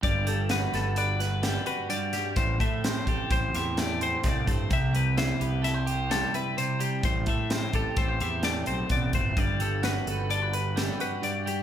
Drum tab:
HH |xxxxxxxxxx|xxxxxxxxxx|xxxxxxxxxx|xxxxxxxxxx|
SD |--oo-oo--o|--o--oo-o-|--o-o-o---|--o---o---|
BD |o---------|oo-oo---oo|o---------|oo-oo---oo|

HH |xxxxxxxxxx|
SD |--o---o---|
BD |o---------|